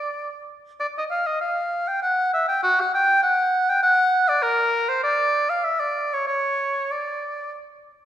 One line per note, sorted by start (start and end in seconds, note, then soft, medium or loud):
0.00 0.49 D5 medium
0.80 0.87 D5 medium
0.98 1.04 D#5 medium
1.10 1.28 F5 medium
1.27 1.40 D#5 medium
1.41 1.90 F5 medium
1.88 2.02 G5 medium
2.02 2.32 F#5 medium
2.34 2.48 E5 medium
2.48 2.62 G5 medium
2.63 2.82 F#4 medium
2.81 2.94 F#5 medium
2.94 3.23 G5 medium
3.23 3.71 F#5 medium
3.70 3.83 G5 medium
3.83 4.30 F#5 medium
4.29 4.44 D5 medium
4.43 4.90 A#4 medium
4.89 5.03 C5 medium
5.04 5.51 D5 medium
5.50 5.66 F5 medium
5.64 5.81 E5 medium
5.80 6.15 D5 medium
6.14 6.26 C#5 medium
6.27 6.93 C#5 medium
6.92 7.55 D5 soft